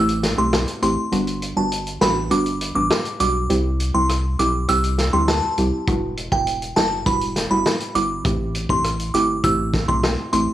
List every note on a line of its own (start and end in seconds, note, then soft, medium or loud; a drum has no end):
0.00 0.34 A1 loud
0.00 0.34 A3 medium
0.00 0.34 C4 medium
0.00 0.34 E4 medium
0.00 0.34 G4 loud
0.09 closed hi-hat medium
0.23 snare medium
0.23 closed hi-hat medium
0.37 0.65 B1 medium
0.37 0.57 A3 medium
0.37 0.57 C4 medium
0.37 0.58 E4 medium
0.37 0.58 G4 medium
0.37 0.47 C6 medium
0.53 cross-stick loud
0.53 snare loud
0.53 closed hi-hat medium
0.68 closed hi-hat medium
0.82 0.96 A1 medium
0.82 1.02 A3 medium
0.82 1.02 C4 medium
0.82 1.02 E4 medium
0.82 1.02 G4 medium
0.82 0.92 C6 medium
0.82 closed hi-hat medium
1.12 1.53 G1 loud
1.12 1.53 G3 medium
1.12 1.53 B3 medium
1.12 1.53 D4 medium
1.12 1.53 F#4 loud
1.12 closed hi-hat medium
1.27 closed hi-hat medium
1.42 closed hi-hat medium
1.56 1.98 G1 medium
1.56 1.76 G3 medium
1.56 1.76 B3 medium
1.56 1.76 D4 medium
1.56 1.77 F#4 medium
1.56 1.66 A5 medium
1.72 closed hi-hat medium
1.87 closed hi-hat soft
2.01 2.29 A1 loud
2.01 2.21 G3 medium
2.01 2.21 B3 medium
2.01 2.21 D4 medium
2.01 2.21 F#4 medium
2.01 2.10 B5 medium
2.01 snare loud
2.01 closed hi-hat medium
2.30 2.72 G1 medium
2.30 2.72 G3 medium
2.30 2.72 B3 medium
2.30 2.72 D4 medium
2.30 2.72 F#4 loud
2.30 2.40 D6 medium
2.30 closed hi-hat medium
2.46 closed hi-hat medium
2.61 closed hi-hat medium
2.75 2.89 A1 loud
2.75 2.95 G3 medium
2.75 2.95 B3 medium
2.75 2.95 D4 medium
2.75 2.95 F#4 medium
2.75 2.85 D6 medium
2.90 cross-stick loud
2.90 snare loud
2.90 closed hi-hat medium
3.05 closed hi-hat soft
3.20 3.47 B1 medium
3.20 3.40 G3 medium
3.20 3.40 B3 medium
3.20 3.40 D4 medium
3.20 3.40 F#4 medium
3.20 3.29 D6 medium
3.20 closed hi-hat medium
3.49 3.91 C2 loud
3.49 3.91 G3 medium
3.49 3.91 C4 medium
3.49 3.91 E4 medium
3.49 3.91 G4 loud
3.49 closed hi-hat medium
3.80 closed hi-hat medium
3.94 4.35 C2 medium
3.94 4.14 G3 medium
3.94 4.14 C4 medium
3.94 4.14 E4 medium
3.94 4.14 G4 medium
3.94 4.04 C6 medium
4.09 cross-stick medium
4.09 closed hi-hat medium
4.39 4.66 B1 medium
4.39 4.59 G3 medium
4.39 4.59 C4 medium
4.39 4.59 E4 medium
4.39 4.59 G4 medium
4.39 4.48 D6 medium
4.39 closed hi-hat medium
4.68 5.09 C2 loud
4.68 5.09 G3 medium
4.68 5.10 C4 medium
4.68 5.10 E4 medium
4.68 5.10 G4 loud
4.68 4.78 E6 loud
4.68 closed hi-hat medium
4.84 closed hi-hat medium
4.98 snare medium
4.98 closed hi-hat medium
5.13 5.40 D2 medium
5.13 5.33 G3 medium
5.13 5.33 C4 medium
5.13 5.33 E4 medium
5.13 5.33 G4 medium
5.13 5.22 C6 medium
5.28 5.70 A5 medium
5.28 cross-stick medium
5.28 snare loud
5.28 closed hi-hat medium
5.58 5.71 C2 medium
5.58 5.77 G3 medium
5.58 5.77 C4 medium
5.58 5.78 E4 medium
5.58 5.78 G4 medium
5.58 closed hi-hat medium
5.87 6.28 E1 loud
5.87 6.28 G3 medium
5.87 6.29 B3 medium
5.87 6.29 E4 medium
5.87 6.29 F#4 loud
5.87 kick loud
5.87 closed hi-hat medium
6.17 closed hi-hat medium
6.32 6.73 E1 medium
6.32 6.51 G3 medium
6.32 6.52 B3 medium
6.32 6.52 E4 medium
6.32 6.52 F#4 medium
6.32 6.41 G5 medium
6.32 kick medium
6.47 closed hi-hat medium
6.62 closed hi-hat medium
6.76 7.04 F#1 loud
6.76 6.96 G3 medium
6.76 6.96 B3 medium
6.76 6.96 E4 medium
6.76 6.96 F#4 medium
6.76 6.85 A5 medium
6.76 snare loud
6.76 closed hi-hat medium
7.06 7.47 E1 medium
7.06 7.47 G3 medium
7.06 7.47 B3 medium
7.06 7.47 E4 medium
7.06 7.47 F#4 loud
7.06 7.15 B5 medium
7.06 kick medium
7.06 closed hi-hat medium
7.21 closed hi-hat medium
7.36 snare medium
7.36 closed hi-hat medium
7.50 7.64 F#1 medium
7.50 7.70 G3 medium
7.50 7.70 B3 medium
7.50 7.70 E4 medium
7.50 7.70 F#4 medium
7.50 7.60 B5 medium
7.66 cross-stick medium
7.66 snare loud
7.66 closed hi-hat medium
7.80 closed hi-hat medium
7.95 8.22 G1 medium
7.95 8.15 G3 medium
7.95 8.15 B3 medium
7.95 8.15 E4 medium
7.95 8.15 F#4 medium
7.95 8.04 D6 medium
7.95 closed hi-hat medium
8.24 8.66 A1 loud
8.24 8.66 A3 medium
8.24 8.66 C4 medium
8.24 8.66 E4 medium
8.24 8.66 G4 loud
8.24 kick loud
8.24 closed hi-hat medium
8.55 closed hi-hat medium
8.69 9.10 A1 medium
8.69 8.89 A3 medium
8.69 8.89 C4 medium
8.69 8.89 E4 medium
8.69 8.89 G4 medium
8.69 8.79 C6 medium
8.69 kick medium
8.84 cross-stick medium
8.84 closed hi-hat medium
9.00 closed hi-hat medium
9.14 9.41 G1 medium
9.14 9.34 A3 medium
9.14 9.34 C4 medium
9.14 9.34 E4 medium
9.14 9.34 G4 medium
9.14 9.23 D6 medium
9.14 closed hi-hat medium
9.44 9.85 A1 loud
9.44 9.85 A3 medium
9.44 9.85 C4 medium
9.44 9.85 E4 medium
9.44 9.85 G4 loud
9.44 9.53 E6 medium
9.44 kick medium
9.44 closed hi-hat medium
9.74 kick medium
9.74 snare medium
9.74 closed hi-hat medium
9.88 10.16 B1 medium
9.88 10.08 A3 medium
9.88 10.08 C4 medium
9.88 10.08 E4 medium
9.88 10.08 G4 medium
9.88 9.97 C6 medium
9.88 kick medium
10.03 cross-stick loud
10.03 snare loud
10.03 closed hi-hat medium
10.33 10.47 A1 loud
10.33 10.52 A3 medium
10.33 10.53 C4 medium
10.33 10.53 E4 medium
10.33 10.53 G4 medium
10.33 10.42 C6 medium
10.33 closed hi-hat medium